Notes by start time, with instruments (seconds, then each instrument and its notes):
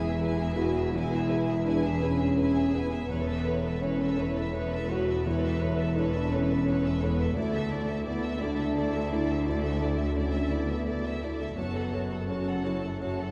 Already playing: double bass section E1, felt piano E2 E4 G#4 B4, cello section E2, harp E3 E4 G#4 B4, french horn section E4
0.01 viola section G#4, violin section G#4
0.05 violin section E5
0.18 viola section E4, felt piano G#4 B4, harp A4, violin section B4
0.24 violin section G#5
0.37 viola section G#4, violin section G#4 E5
0.55 viola section E4, felt piano E4 G#4 B4, french horn section F#4, harp B4, violin section B4
0.61 violin section G#5
0.74 viola section G#4, violin section G#4 E5
0.92 felt piano E2, harp E3, french horn section E4, viola section E4, violin section B4 G#5
1.11 viola section G#4, violin section G#4 E5
1.29 viola section E4, felt piano G#4 B4, harp G#4, violin section B4 G#5
1.47 violin section G#4 E5, viola section G#4
1.65 french horn section D4, harp E4, felt piano E4 G#4 B4, viola section E4, violin section B4 G#5
1.84 violin section G#4 E5, viola section G#4
2.00 french horn section C#4, felt piano E4 G#4 B4, viola section E4, violin section B4 G#5, harp B4
2.19 violin section G#4 E5, viola section G#4
2.37 viola section E4, felt piano G#4 B4, harp A4, violin section B4 G#5
2.54 violin section G#4 E5, viola section G#4
2.73 french horn section B3, viola section E4, felt piano E4 G#4 B4, violin section B4 G#5, harp B4
2.91 viola section G#4, violin section G#4 E5
3.08 double bass section E1, felt piano E2, cello section E2, harp E3, french horn section B3, viola section B4, violin section B4 C#5
3.26 viola section A4, violin section B4 E5
3.45 harp E4, felt piano A4 C#5, viola section B4, violin section B4 C#5
3.64 viola section A4, violin section B4 E5
3.81 french horn section C#4, harp C#4, felt piano E4 A4 C#5, viola section B4, violin section B4 C#5
3.99 viola section A4, violin section B4 E5
4.16 french horn section E4, felt piano E4 A4 C#5, harp A4, viola section B4, violin section B4 C#5
4.35 viola section A4, violin section B4 E5
4.52 harp G#4, felt piano A4 C#5, viola section B4, violin section B4 C#5
4.71 viola section A4, violin section B4 E5
4.89 felt piano E4 A4 C#5, french horn section F#4, harp A4, viola section B4, violin section B4 C#5
5.07 viola section A4, violin section B4 E5
5.24 felt piano E2, harp E3, french horn section E4, viola section B4, violin section B4 C#5
5.42 viola section A4, violin section B4 E5
5.60 harp E4, felt piano A4 C#5, viola section B4, violin section B4 C#5
5.78 viola section A4, violin section B4 E5
5.95 harp C#4, french horn section D4, felt piano E4 A4 C#5, viola section B4, violin section B4 C#5
6.13 viola section A4, violin section B4 E5
6.31 french horn section C#4, felt piano E4 A4 C#5, harp A4, viola section B4, violin section B4 C#5
6.49 viola section A4, violin section B4 E5
6.66 harp G#4, felt piano A4 C#5, viola section B4, violin section B4 C#5
6.84 viola section A4, violin section B4 E5
7.02 french horn section B3, felt piano E4 A4 C#5, harp A4, violin section B4 C#5, viola section B4
7.20 viola section A4, violin section B4 E5
7.36 felt piano D2, cello section D2, double bass section D2, harp D3, french horn section A3, viola section E4, violin section D5
7.54 viola section A4, violin section E5
7.70 harp E4, viola section E4, felt piano A4 D5, violin section D5
7.86 viola section A4, violin section E5
7.90 violin section E5
8.03 french horn section B3, harp D4, viola section E4, violin section D5
8.07 felt piano E4 A4 D5, violin section D5
8.21 viola section A4, violin section E5
8.26 violin section E5
8.37 french horn section D4, harp A4, violin section D5
8.42 viola section E4, felt piano E4 A4 D5, violin section D5
8.55 violin section E5
8.59 viola section A4, violin section E5
8.73 harp G#4, felt piano A4 D5, violin section D5
8.78 viola section E4, violin section D5
8.90 violin section E5
8.95 viola section A4, violin section E5
9.08 viola section E4, felt piano E4 A4, harp A4, violin section D5
9.12 french horn section E4, felt piano D5, violin section D5
9.26 viola section A4, violin section E5
9.31 violin section E5
9.45 felt piano D2, harp D3, french horn section D4, viola section E4, violin section D5
9.62 viola section A4, violin section E5
9.81 harp E4, viola section E4, felt piano A4 D5, violin section D5
9.96 viola section A4, violin section E5
10.14 french horn section C#4, harp D4, felt piano E4 A4 D5, viola section E4, violin section D5
10.33 viola section A4, violin section E5
10.50 french horn section B3, felt piano E4 A4 D5, viola section E4, violin section D5
10.69 viola section A4, violin section E5
10.84 viola section E4, harp G#4, felt piano A4 D5, violin section D5
10.89 violin section D5
11.02 viola section A4, violin section E5
11.20 french horn section A3, viola section E4, felt piano E4 A4 D5, violin section D5
11.39 viola section A4, violin section E5
11.55 double bass section F#1, cello section F#2, harp F#2, felt piano F#2, french horn section B3, viola section F#4, violin section C#5 A5
11.75 viola section A4, violin section A4 F#5
11.92 harp F#4, viola section F#4, felt piano A4 C#5, violin section C#5 A5
12.10 viola section A4, violin section A4 F#5
12.27 french horn section C#4, harp C#4, viola section F#4, felt piano F#4 A4 C#5, violin section C#5 A5
12.46 viola section A4, violin section A4 F#5
12.63 french horn section E4, felt piano F#4 A4 C#5, viola section F#4, harp C#5, violin section C#5 A5
12.82 violin section A4 F#5, viola section A4
13.00 viola section F#4, harp G#4, felt piano A4 C#5, violin section C#5 A5
13.20 violin section A4 F#5, viola section A4